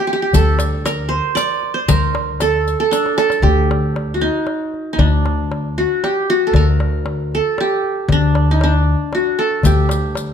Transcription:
Already playing: qanun A4
0.07 qanun G4, darbuka ka
0.13 qanun G4
0.22 qanun G4
0.33 upright bass D2, qanun A4, riq, darbuka dum
0.59 riq, darbuka tek
0.85 qanun A#4, riq, darbuka tek
1.09 qanun C5
1.35 qanun D5, riq, darbuka tek
1.63 darbuka ka
1.74 qanun C5
1.88 upright bass D2, qanun A#4, riq, darbuka dum
2.15 darbuka tek
2.40 qanun A4, riq, darbuka tek
2.67 riq, darbuka ka
2.80 qanun A4
2.91 qanun D4, riq, darbuka tek
3.06 darbuka ka
3.18 qanun A4, riq, darbuka tek
3.30 riq, darbuka ka
3.42 upright bass D2, qanun G4, darbuka dum
3.71 darbuka tek
3.96 darbuka tek
4.14 qanun F#4
4.21 qanun D#4, darbuka ka
4.47 darbuka tek
4.74 darbuka ka
4.93 qanun D#4
4.99 upright bass D2, qanun D4, darbuka dum
5.26 darbuka tek
5.52 darbuka tek
5.78 qanun F#4, darbuka ka
6.04 qanun G4, darbuka tek
6.29 qanun F#4, darbuka ka
6.47 qanun A4
6.53 upright bass D2, qanun A#4, darbuka dum
6.80 darbuka tek
7.06 darbuka tek
7.32 qanun A4, darbuka ka
7.58 qanun G4, darbuka tek
7.84 darbuka ka
8.08 upright bass D2, qanun D4, darbuka dum
8.35 darbuka tek
8.51 qanun D#4
8.61 qanun D4, darbuka tek
8.87 darbuka ka
9.13 qanun F#4, darbuka tek
9.39 qanun A4, darbuka ka
9.51 darbuka ka
9.63 upright bass D2, qanun G4, riq, darbuka dum
9.89 riq, darbuka tek
10.15 riq, darbuka tek

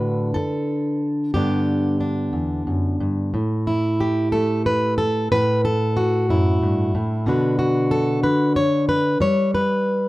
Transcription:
Already playing: steel-string acoustic guitar A2 D3 D4 F#4 B4
0.34 steel-string acoustic guitar A4, muted steel-string acoustic guitar stroke
1.34 steel-string acoustic guitar G2 D3 B3 D4 G4
2.00 steel-string acoustic guitar D4
2.33 steel-string acoustic guitar E2
2.67 steel-string acoustic guitar F#2
3.00 steel-string acoustic guitar G2
3.34 steel-string acoustic guitar A2
3.67 steel-string acoustic guitar E4
4.00 steel-string acoustic guitar G4
4.32 steel-string acoustic guitar A3 A4
4.66 steel-string acoustic guitar B4
4.98 steel-string acoustic guitar A4
5.32 steel-string acoustic guitar A2 B4
5.65 steel-string acoustic guitar A4
5.97 steel-string acoustic guitar F#4
6.29 steel-string acoustic guitar F#2 E4
6.63 steel-string acoustic guitar G2
6.95 steel-string acoustic guitar A2
7.26 steel-string acoustic guitar B2 D3 D4 F#4 B4
7.59 steel-string acoustic guitar F#4
7.91 steel-string acoustic guitar A4
8.23 steel-string acoustic guitar D3 B4
8.56 steel-string acoustic guitar C#5
8.89 steel-string acoustic guitar B4
9.20 steel-string acoustic guitar G3 C#5
9.55 steel-string acoustic guitar B4

